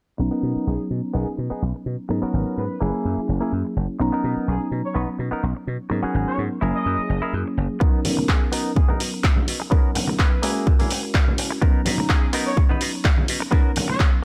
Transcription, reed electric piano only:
0, 0, Header, 1, 2, 480
1, 0, Start_track
1, 0, Key_signature, 5, "major"
1, 0, Tempo, 476190
1, 195, Time_signature, 4, 2, 24, 8
1, 14354, End_track
2, 0, Start_track
2, 0, Title_t, "Reed electric piano"
2, 0, Program_c, 0, 4
2, 189, Note_on_c, 0, 54, 85
2, 194, Note_on_c, 0, 59, 83
2, 197, Note_on_c, 0, 61, 80
2, 200, Note_on_c, 0, 63, 82
2, 205, Note_on_c, 0, 82, 97
2, 2067, Note_off_c, 0, 54, 0
2, 2070, Note_off_c, 0, 59, 0
2, 2071, Note_off_c, 0, 61, 0
2, 2073, Note_off_c, 0, 63, 0
2, 2075, Note_off_c, 0, 82, 0
2, 2105, Note_on_c, 0, 54, 76
2, 2107, Note_on_c, 0, 59, 69
2, 2113, Note_on_c, 0, 61, 70
2, 2115, Note_on_c, 0, 63, 73
2, 2119, Note_on_c, 0, 70, 88
2, 2785, Note_off_c, 0, 54, 0
2, 2786, Note_off_c, 0, 59, 0
2, 2789, Note_off_c, 0, 61, 0
2, 2790, Note_off_c, 0, 63, 0
2, 2792, Note_off_c, 0, 70, 0
2, 2825, Note_on_c, 0, 54, 85
2, 2831, Note_on_c, 0, 58, 82
2, 2834, Note_on_c, 0, 61, 79
2, 2837, Note_on_c, 0, 64, 82
2, 2840, Note_on_c, 0, 68, 97
2, 3985, Note_off_c, 0, 54, 0
2, 3988, Note_off_c, 0, 58, 0
2, 3990, Note_off_c, 0, 61, 0
2, 3991, Note_off_c, 0, 64, 0
2, 3993, Note_off_c, 0, 68, 0
2, 4027, Note_on_c, 0, 54, 90
2, 4030, Note_on_c, 0, 59, 85
2, 4034, Note_on_c, 0, 61, 84
2, 4039, Note_on_c, 0, 63, 83
2, 4042, Note_on_c, 0, 82, 104
2, 5906, Note_off_c, 0, 54, 0
2, 5908, Note_off_c, 0, 59, 0
2, 5910, Note_off_c, 0, 61, 0
2, 5912, Note_off_c, 0, 63, 0
2, 5914, Note_off_c, 0, 82, 0
2, 5943, Note_on_c, 0, 54, 83
2, 5948, Note_on_c, 0, 59, 76
2, 5951, Note_on_c, 0, 61, 76
2, 5957, Note_on_c, 0, 63, 72
2, 5960, Note_on_c, 0, 70, 89
2, 6624, Note_off_c, 0, 54, 0
2, 6626, Note_off_c, 0, 59, 0
2, 6628, Note_off_c, 0, 61, 0
2, 6631, Note_off_c, 0, 63, 0
2, 6633, Note_off_c, 0, 70, 0
2, 6663, Note_on_c, 0, 54, 92
2, 6670, Note_on_c, 0, 58, 78
2, 6674, Note_on_c, 0, 61, 84
2, 6677, Note_on_c, 0, 64, 81
2, 6680, Note_on_c, 0, 68, 99
2, 7824, Note_off_c, 0, 54, 0
2, 7828, Note_off_c, 0, 58, 0
2, 7829, Note_off_c, 0, 61, 0
2, 7831, Note_off_c, 0, 64, 0
2, 7833, Note_off_c, 0, 68, 0
2, 7865, Note_on_c, 0, 54, 92
2, 7868, Note_on_c, 0, 59, 84
2, 7874, Note_on_c, 0, 61, 84
2, 7878, Note_on_c, 0, 63, 83
2, 7882, Note_on_c, 0, 70, 103
2, 9745, Note_off_c, 0, 54, 0
2, 9747, Note_off_c, 0, 59, 0
2, 9749, Note_off_c, 0, 61, 0
2, 9751, Note_off_c, 0, 63, 0
2, 9754, Note_off_c, 0, 70, 0
2, 9788, Note_on_c, 0, 54, 84
2, 9793, Note_on_c, 0, 59, 74
2, 9796, Note_on_c, 0, 61, 74
2, 9801, Note_on_c, 0, 63, 75
2, 9804, Note_on_c, 0, 70, 87
2, 10467, Note_off_c, 0, 54, 0
2, 10469, Note_off_c, 0, 59, 0
2, 10471, Note_off_c, 0, 61, 0
2, 10473, Note_off_c, 0, 63, 0
2, 10475, Note_off_c, 0, 70, 0
2, 10507, Note_on_c, 0, 56, 88
2, 10511, Note_on_c, 0, 61, 83
2, 10514, Note_on_c, 0, 64, 81
2, 10518, Note_on_c, 0, 66, 84
2, 10523, Note_on_c, 0, 70, 97
2, 11666, Note_off_c, 0, 56, 0
2, 11668, Note_off_c, 0, 61, 0
2, 11669, Note_off_c, 0, 64, 0
2, 11672, Note_off_c, 0, 66, 0
2, 11674, Note_off_c, 0, 70, 0
2, 11703, Note_on_c, 0, 54, 95
2, 11708, Note_on_c, 0, 59, 86
2, 11711, Note_on_c, 0, 61, 84
2, 11714, Note_on_c, 0, 63, 88
2, 11719, Note_on_c, 0, 82, 102
2, 13584, Note_off_c, 0, 54, 0
2, 13587, Note_off_c, 0, 59, 0
2, 13588, Note_off_c, 0, 61, 0
2, 13590, Note_off_c, 0, 63, 0
2, 13592, Note_off_c, 0, 82, 0
2, 13621, Note_on_c, 0, 54, 83
2, 13627, Note_on_c, 0, 59, 75
2, 13631, Note_on_c, 0, 61, 78
2, 13634, Note_on_c, 0, 63, 76
2, 13637, Note_on_c, 0, 70, 92
2, 14303, Note_off_c, 0, 54, 0
2, 14306, Note_off_c, 0, 59, 0
2, 14308, Note_off_c, 0, 61, 0
2, 14309, Note_off_c, 0, 63, 0
2, 14311, Note_off_c, 0, 70, 0
2, 14354, End_track
0, 0, End_of_file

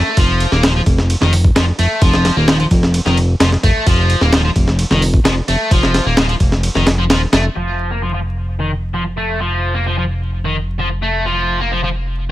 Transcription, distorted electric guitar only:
0, 0, Header, 1, 2, 480
1, 0, Start_track
1, 0, Tempo, 461538
1, 183, Time_signature, 4, 2, 24, 8
1, 12806, End_track
2, 0, Start_track
2, 0, Title_t, "Distorted electric guitar"
2, 0, Program_c, 0, 30
2, 0, Note_on_c, 0, 57, 76
2, 171, Note_off_c, 0, 57, 0
2, 183, Note_on_c, 0, 53, 99
2, 533, Note_off_c, 0, 53, 0
2, 542, Note_on_c, 0, 58, 99
2, 650, Note_off_c, 0, 58, 0
2, 657, Note_on_c, 0, 53, 78
2, 749, Note_off_c, 0, 53, 0
2, 789, Note_on_c, 0, 53, 73
2, 839, Note_off_c, 0, 53, 0
2, 1263, Note_on_c, 0, 51, 76
2, 1376, Note_off_c, 0, 51, 0
2, 1622, Note_on_c, 0, 53, 79
2, 1712, Note_off_c, 0, 53, 0
2, 1861, Note_on_c, 0, 57, 74
2, 2091, Note_off_c, 0, 57, 0
2, 2097, Note_on_c, 0, 53, 101
2, 2450, Note_off_c, 0, 53, 0
2, 2459, Note_on_c, 0, 58, 104
2, 2568, Note_off_c, 0, 58, 0
2, 2576, Note_on_c, 0, 53, 77
2, 2669, Note_off_c, 0, 53, 0
2, 2702, Note_on_c, 0, 53, 76
2, 2755, Note_off_c, 0, 53, 0
2, 3181, Note_on_c, 0, 51, 76
2, 3295, Note_off_c, 0, 51, 0
2, 3539, Note_on_c, 0, 53, 81
2, 3630, Note_off_c, 0, 53, 0
2, 3781, Note_on_c, 0, 57, 77
2, 4010, Note_off_c, 0, 57, 0
2, 4026, Note_on_c, 0, 53, 100
2, 4375, Note_off_c, 0, 53, 0
2, 4387, Note_on_c, 0, 58, 103
2, 4492, Note_off_c, 0, 58, 0
2, 4499, Note_on_c, 0, 53, 83
2, 4590, Note_off_c, 0, 53, 0
2, 4623, Note_on_c, 0, 53, 78
2, 4676, Note_off_c, 0, 53, 0
2, 5104, Note_on_c, 0, 51, 75
2, 5217, Note_off_c, 0, 51, 0
2, 5460, Note_on_c, 0, 53, 78
2, 5551, Note_off_c, 0, 53, 0
2, 5704, Note_on_c, 0, 57, 77
2, 5932, Note_off_c, 0, 57, 0
2, 5945, Note_on_c, 0, 53, 101
2, 6294, Note_off_c, 0, 53, 0
2, 6304, Note_on_c, 0, 58, 99
2, 6411, Note_off_c, 0, 58, 0
2, 6419, Note_on_c, 0, 53, 81
2, 6510, Note_off_c, 0, 53, 0
2, 6542, Note_on_c, 0, 53, 74
2, 6595, Note_off_c, 0, 53, 0
2, 7022, Note_on_c, 0, 51, 77
2, 7136, Note_off_c, 0, 51, 0
2, 7262, Note_on_c, 0, 53, 77
2, 7315, Note_off_c, 0, 53, 0
2, 7382, Note_on_c, 0, 53, 82
2, 7493, Note_off_c, 0, 53, 0
2, 7619, Note_on_c, 0, 57, 102
2, 7731, Note_off_c, 0, 57, 0
2, 7865, Note_on_c, 0, 53, 96
2, 8214, Note_off_c, 0, 53, 0
2, 8226, Note_on_c, 0, 58, 94
2, 8332, Note_off_c, 0, 58, 0
2, 8343, Note_on_c, 0, 53, 73
2, 8432, Note_off_c, 0, 53, 0
2, 8465, Note_on_c, 0, 53, 72
2, 8517, Note_off_c, 0, 53, 0
2, 8940, Note_on_c, 0, 51, 69
2, 9055, Note_off_c, 0, 51, 0
2, 9296, Note_on_c, 0, 53, 73
2, 9389, Note_off_c, 0, 53, 0
2, 9536, Note_on_c, 0, 57, 70
2, 9768, Note_off_c, 0, 57, 0
2, 9777, Note_on_c, 0, 53, 93
2, 10130, Note_off_c, 0, 53, 0
2, 10135, Note_on_c, 0, 58, 92
2, 10246, Note_off_c, 0, 58, 0
2, 10261, Note_on_c, 0, 53, 72
2, 10351, Note_off_c, 0, 53, 0
2, 10381, Note_on_c, 0, 53, 72
2, 10435, Note_off_c, 0, 53, 0
2, 10866, Note_on_c, 0, 51, 68
2, 10978, Note_off_c, 0, 51, 0
2, 11225, Note_on_c, 0, 53, 74
2, 11314, Note_off_c, 0, 53, 0
2, 11462, Note_on_c, 0, 57, 72
2, 11691, Note_off_c, 0, 57, 0
2, 11703, Note_on_c, 0, 53, 94
2, 12054, Note_off_c, 0, 53, 0
2, 12067, Note_on_c, 0, 58, 97
2, 12172, Note_off_c, 0, 58, 0
2, 12184, Note_on_c, 0, 53, 77
2, 12273, Note_off_c, 0, 53, 0
2, 12312, Note_on_c, 0, 53, 70
2, 12360, Note_off_c, 0, 53, 0
2, 12806, End_track
0, 0, End_of_file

